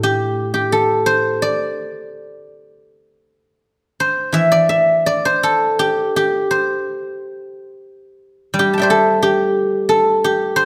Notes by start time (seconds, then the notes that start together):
Already playing: A2 G4
0.03 G4
0.54 G4
0.72 A4
1.06 C5
1.42 D5
4.00 C5
4.32 E3 E5
4.52 D5
4.69 E5
5.06 D5
5.25 C5
5.43 A4
5.79 G4
6.16 G4
6.51 C5
8.54 G3
8.59 G4
8.73 A5
8.78 D5 E5 G5
8.83 C5
8.90 A4
9.22 G4
9.89 A4
10.24 G4
10.56 C5